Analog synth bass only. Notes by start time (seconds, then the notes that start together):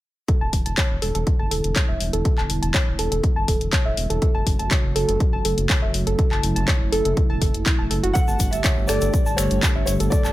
0.41 E1
0.53 E1
0.66 E1
0.90 E1
1.02 E1
1.15 E1
1.40 F#1
1.51 E1
1.64 E1
1.89 E1
2.00 E1
2.13 E1
2.38 E1
2.50 E1
2.62 E1
2.87 E1
2.99 E1
3.12 E1
3.36 F#1
3.48 E1
3.61 E1
3.86 E1
3.97 E1
4.10 E1
4.35 F#1
4.46 F#1
4.59 F#1
4.84 F#1
4.96 F#1
5.08 F#1
5.33 G1
5.45 F#1
5.58 F#1
5.82 F#1
5.94 F#1
6.07 F#1
6.31 F#1
6.43 F#1
6.56 F#1
6.81 F#1
6.92 F#1
7.05 F#1
7.30 E1
7.42 F#1
7.54 F#1
7.79 E1
7.91 F#1
8.03 F#1
8.28 G1
8.40 G1
8.52 G1
8.77 G1
8.89 G1
9.02 G1
9.26 A1
9.38 G1
9.51 G1
9.75 G1
9.87 G1
10.00 G1
10.25 G1